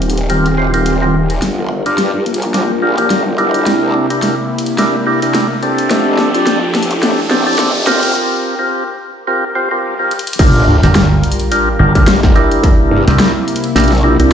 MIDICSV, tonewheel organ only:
0, 0, Header, 1, 2, 480
1, 0, Start_track
1, 0, Tempo, 560748
1, 1217, Time_signature, 4, 2, 24, 8
1, 12266, End_track
2, 0, Start_track
2, 0, Title_t, "Tonewheel organ"
2, 0, Program_c, 0, 16
2, 254, Note_on_c, 0, 70, 97
2, 255, Note_on_c, 0, 60, 84
2, 255, Note_on_c, 0, 67, 74
2, 256, Note_on_c, 0, 65, 74
2, 405, Note_off_c, 0, 60, 0
2, 405, Note_off_c, 0, 65, 0
2, 405, Note_off_c, 0, 67, 0
2, 405, Note_off_c, 0, 70, 0
2, 496, Note_on_c, 0, 60, 86
2, 496, Note_on_c, 0, 65, 80
2, 496, Note_on_c, 0, 67, 81
2, 496, Note_on_c, 0, 72, 93
2, 612, Note_off_c, 0, 60, 0
2, 612, Note_off_c, 0, 65, 0
2, 612, Note_off_c, 0, 67, 0
2, 612, Note_off_c, 0, 72, 0
2, 632, Note_on_c, 0, 60, 93
2, 632, Note_on_c, 0, 65, 87
2, 632, Note_on_c, 0, 67, 88
2, 632, Note_on_c, 0, 70, 101
2, 832, Note_off_c, 0, 60, 0
2, 832, Note_off_c, 0, 65, 0
2, 832, Note_off_c, 0, 67, 0
2, 832, Note_off_c, 0, 70, 0
2, 872, Note_on_c, 0, 60, 83
2, 872, Note_on_c, 0, 67, 78
2, 872, Note_on_c, 0, 70, 96
2, 873, Note_on_c, 0, 65, 77
2, 994, Note_off_c, 0, 60, 0
2, 994, Note_off_c, 0, 65, 0
2, 994, Note_off_c, 0, 67, 0
2, 994, Note_off_c, 0, 70, 0
2, 1592, Note_on_c, 0, 62, 74
2, 1592, Note_on_c, 0, 65, 67
2, 1592, Note_on_c, 0, 67, 66
2, 1592, Note_on_c, 0, 70, 77
2, 1805, Note_off_c, 0, 62, 0
2, 1805, Note_off_c, 0, 65, 0
2, 1805, Note_off_c, 0, 67, 0
2, 1805, Note_off_c, 0, 70, 0
2, 2176, Note_on_c, 0, 65, 77
2, 2177, Note_on_c, 0, 62, 86
2, 2177, Note_on_c, 0, 67, 81
2, 2177, Note_on_c, 0, 70, 94
2, 2326, Note_off_c, 0, 62, 0
2, 2326, Note_off_c, 0, 65, 0
2, 2326, Note_off_c, 0, 67, 0
2, 2326, Note_off_c, 0, 70, 0
2, 2416, Note_on_c, 0, 62, 88
2, 2416, Note_on_c, 0, 70, 93
2, 2417, Note_on_c, 0, 65, 83
2, 2417, Note_on_c, 0, 67, 84
2, 2532, Note_off_c, 0, 62, 0
2, 2532, Note_off_c, 0, 65, 0
2, 2532, Note_off_c, 0, 67, 0
2, 2532, Note_off_c, 0, 70, 0
2, 2551, Note_on_c, 0, 62, 93
2, 2551, Note_on_c, 0, 67, 86
2, 2551, Note_on_c, 0, 70, 98
2, 2552, Note_on_c, 0, 65, 89
2, 2765, Note_off_c, 0, 62, 0
2, 2765, Note_off_c, 0, 65, 0
2, 2765, Note_off_c, 0, 67, 0
2, 2765, Note_off_c, 0, 70, 0
2, 2895, Note_on_c, 0, 62, 99
2, 2895, Note_on_c, 0, 67, 86
2, 2896, Note_on_c, 0, 64, 88
2, 2896, Note_on_c, 0, 70, 106
2, 3479, Note_off_c, 0, 62, 0
2, 3480, Note_off_c, 0, 64, 0
2, 3480, Note_off_c, 0, 67, 0
2, 3480, Note_off_c, 0, 70, 0
2, 3511, Note_on_c, 0, 64, 69
2, 3512, Note_on_c, 0, 62, 74
2, 3512, Note_on_c, 0, 67, 70
2, 3512, Note_on_c, 0, 70, 87
2, 3725, Note_off_c, 0, 62, 0
2, 3725, Note_off_c, 0, 64, 0
2, 3725, Note_off_c, 0, 67, 0
2, 3725, Note_off_c, 0, 70, 0
2, 4096, Note_on_c, 0, 70, 92
2, 4097, Note_on_c, 0, 62, 88
2, 4097, Note_on_c, 0, 64, 80
2, 4097, Note_on_c, 0, 67, 82
2, 4246, Note_off_c, 0, 62, 0
2, 4246, Note_off_c, 0, 64, 0
2, 4246, Note_off_c, 0, 67, 0
2, 4246, Note_off_c, 0, 70, 0
2, 4336, Note_on_c, 0, 67, 83
2, 4337, Note_on_c, 0, 62, 86
2, 4337, Note_on_c, 0, 64, 78
2, 4337, Note_on_c, 0, 70, 102
2, 4452, Note_off_c, 0, 62, 0
2, 4452, Note_off_c, 0, 64, 0
2, 4452, Note_off_c, 0, 67, 0
2, 4453, Note_off_c, 0, 70, 0
2, 4473, Note_on_c, 0, 62, 96
2, 4473, Note_on_c, 0, 64, 90
2, 4473, Note_on_c, 0, 67, 89
2, 4473, Note_on_c, 0, 70, 109
2, 4686, Note_off_c, 0, 62, 0
2, 4686, Note_off_c, 0, 64, 0
2, 4686, Note_off_c, 0, 67, 0
2, 4686, Note_off_c, 0, 70, 0
2, 4816, Note_on_c, 0, 60, 97
2, 4816, Note_on_c, 0, 62, 85
2, 4816, Note_on_c, 0, 67, 90
2, 4816, Note_on_c, 0, 69, 104
2, 5400, Note_off_c, 0, 60, 0
2, 5400, Note_off_c, 0, 62, 0
2, 5400, Note_off_c, 0, 67, 0
2, 5400, Note_off_c, 0, 69, 0
2, 5432, Note_on_c, 0, 60, 77
2, 5432, Note_on_c, 0, 62, 69
2, 5432, Note_on_c, 0, 67, 73
2, 5432, Note_on_c, 0, 69, 86
2, 5645, Note_off_c, 0, 60, 0
2, 5645, Note_off_c, 0, 62, 0
2, 5645, Note_off_c, 0, 67, 0
2, 5645, Note_off_c, 0, 69, 0
2, 6015, Note_on_c, 0, 60, 90
2, 6015, Note_on_c, 0, 62, 84
2, 6015, Note_on_c, 0, 67, 82
2, 6016, Note_on_c, 0, 69, 97
2, 6165, Note_off_c, 0, 60, 0
2, 6165, Note_off_c, 0, 62, 0
2, 6165, Note_off_c, 0, 67, 0
2, 6165, Note_off_c, 0, 69, 0
2, 6255, Note_on_c, 0, 60, 94
2, 6255, Note_on_c, 0, 62, 84
2, 6255, Note_on_c, 0, 67, 85
2, 6256, Note_on_c, 0, 69, 99
2, 6371, Note_off_c, 0, 60, 0
2, 6371, Note_off_c, 0, 67, 0
2, 6372, Note_off_c, 0, 62, 0
2, 6372, Note_off_c, 0, 69, 0
2, 6390, Note_on_c, 0, 60, 97
2, 6390, Note_on_c, 0, 67, 93
2, 6390, Note_on_c, 0, 69, 112
2, 6391, Note_on_c, 0, 62, 91
2, 6604, Note_off_c, 0, 60, 0
2, 6604, Note_off_c, 0, 67, 0
2, 6604, Note_off_c, 0, 69, 0
2, 6605, Note_off_c, 0, 62, 0
2, 6736, Note_on_c, 0, 60, 100
2, 6736, Note_on_c, 0, 65, 90
2, 6736, Note_on_c, 0, 67, 91
2, 6736, Note_on_c, 0, 70, 109
2, 7320, Note_off_c, 0, 60, 0
2, 7320, Note_off_c, 0, 65, 0
2, 7320, Note_off_c, 0, 67, 0
2, 7320, Note_off_c, 0, 70, 0
2, 7352, Note_on_c, 0, 67, 73
2, 7353, Note_on_c, 0, 60, 79
2, 7353, Note_on_c, 0, 65, 73
2, 7353, Note_on_c, 0, 70, 88
2, 7565, Note_off_c, 0, 65, 0
2, 7565, Note_off_c, 0, 67, 0
2, 7566, Note_off_c, 0, 60, 0
2, 7566, Note_off_c, 0, 70, 0
2, 7938, Note_on_c, 0, 65, 82
2, 7938, Note_on_c, 0, 70, 100
2, 7939, Note_on_c, 0, 60, 93
2, 7939, Note_on_c, 0, 67, 85
2, 8086, Note_off_c, 0, 65, 0
2, 8087, Note_off_c, 0, 60, 0
2, 8087, Note_off_c, 0, 67, 0
2, 8087, Note_off_c, 0, 70, 0
2, 8177, Note_on_c, 0, 60, 92
2, 8177, Note_on_c, 0, 65, 85
2, 8177, Note_on_c, 0, 67, 86
2, 8178, Note_on_c, 0, 72, 103
2, 8292, Note_off_c, 0, 60, 0
2, 8292, Note_off_c, 0, 65, 0
2, 8293, Note_off_c, 0, 67, 0
2, 8293, Note_off_c, 0, 72, 0
2, 8313, Note_on_c, 0, 60, 102
2, 8314, Note_on_c, 0, 65, 93
2, 8314, Note_on_c, 0, 67, 93
2, 8314, Note_on_c, 0, 70, 113
2, 8512, Note_off_c, 0, 60, 0
2, 8513, Note_off_c, 0, 65, 0
2, 8513, Note_off_c, 0, 67, 0
2, 8513, Note_off_c, 0, 70, 0
2, 8553, Note_on_c, 0, 60, 94
2, 8553, Note_on_c, 0, 67, 83
2, 8554, Note_on_c, 0, 65, 86
2, 8554, Note_on_c, 0, 70, 99
2, 8674, Note_off_c, 0, 60, 0
2, 8674, Note_off_c, 0, 67, 0
2, 8674, Note_off_c, 0, 70, 0
2, 8675, Note_off_c, 0, 65, 0
2, 8898, Note_on_c, 0, 62, 97
2, 8898, Note_on_c, 0, 67, 89
2, 8898, Note_on_c, 0, 70, 109
2, 8899, Note_on_c, 0, 65, 89
2, 9219, Note_off_c, 0, 62, 0
2, 9219, Note_off_c, 0, 65, 0
2, 9219, Note_off_c, 0, 67, 0
2, 9219, Note_off_c, 0, 70, 0
2, 9275, Note_on_c, 0, 62, 81
2, 9275, Note_on_c, 0, 65, 70
2, 9275, Note_on_c, 0, 67, 74
2, 9275, Note_on_c, 0, 70, 88
2, 9487, Note_off_c, 0, 62, 0
2, 9487, Note_off_c, 0, 65, 0
2, 9487, Note_off_c, 0, 67, 0
2, 9487, Note_off_c, 0, 70, 0
2, 9857, Note_on_c, 0, 62, 90
2, 9857, Note_on_c, 0, 65, 84
2, 9858, Note_on_c, 0, 67, 81
2, 9858, Note_on_c, 0, 70, 101
2, 10006, Note_off_c, 0, 62, 0
2, 10006, Note_off_c, 0, 65, 0
2, 10006, Note_off_c, 0, 67, 0
2, 10006, Note_off_c, 0, 70, 0
2, 10095, Note_on_c, 0, 62, 95
2, 10096, Note_on_c, 0, 65, 88
2, 10096, Note_on_c, 0, 67, 86
2, 10096, Note_on_c, 0, 70, 106
2, 10212, Note_off_c, 0, 62, 0
2, 10212, Note_off_c, 0, 65, 0
2, 10212, Note_off_c, 0, 67, 0
2, 10212, Note_off_c, 0, 70, 0
2, 10232, Note_on_c, 0, 62, 100
2, 10232, Note_on_c, 0, 65, 90
2, 10233, Note_on_c, 0, 67, 94
2, 10233, Note_on_c, 0, 70, 111
2, 10445, Note_off_c, 0, 62, 0
2, 10445, Note_off_c, 0, 65, 0
2, 10446, Note_off_c, 0, 67, 0
2, 10446, Note_off_c, 0, 70, 0
2, 10577, Note_on_c, 0, 62, 102
2, 10577, Note_on_c, 0, 64, 91
2, 10577, Note_on_c, 0, 67, 91
2, 10577, Note_on_c, 0, 70, 108
2, 11160, Note_off_c, 0, 62, 0
2, 11160, Note_off_c, 0, 64, 0
2, 11160, Note_off_c, 0, 67, 0
2, 11160, Note_off_c, 0, 70, 0
2, 11193, Note_on_c, 0, 62, 78
2, 11193, Note_on_c, 0, 64, 69
2, 11193, Note_on_c, 0, 67, 71
2, 11193, Note_on_c, 0, 70, 88
2, 11406, Note_off_c, 0, 62, 0
2, 11406, Note_off_c, 0, 64, 0
2, 11406, Note_off_c, 0, 67, 0
2, 11406, Note_off_c, 0, 70, 0
2, 11776, Note_on_c, 0, 64, 85
2, 11776, Note_on_c, 0, 67, 85
2, 11776, Note_on_c, 0, 70, 102
2, 11777, Note_on_c, 0, 62, 88
2, 11925, Note_off_c, 0, 67, 0
2, 11926, Note_off_c, 0, 62, 0
2, 11926, Note_off_c, 0, 64, 0
2, 11926, Note_off_c, 0, 70, 0
2, 12016, Note_on_c, 0, 70, 102
2, 12017, Note_on_c, 0, 62, 93
2, 12017, Note_on_c, 0, 64, 85
2, 12017, Note_on_c, 0, 67, 88
2, 12132, Note_off_c, 0, 62, 0
2, 12132, Note_off_c, 0, 64, 0
2, 12132, Note_off_c, 0, 67, 0
2, 12132, Note_off_c, 0, 70, 0
2, 12152, Note_on_c, 0, 62, 97
2, 12152, Note_on_c, 0, 64, 91
2, 12152, Note_on_c, 0, 67, 93
2, 12152, Note_on_c, 0, 70, 115
2, 12266, Note_off_c, 0, 62, 0
2, 12266, Note_off_c, 0, 64, 0
2, 12266, Note_off_c, 0, 67, 0
2, 12266, Note_off_c, 0, 70, 0
2, 12266, End_track
0, 0, End_of_file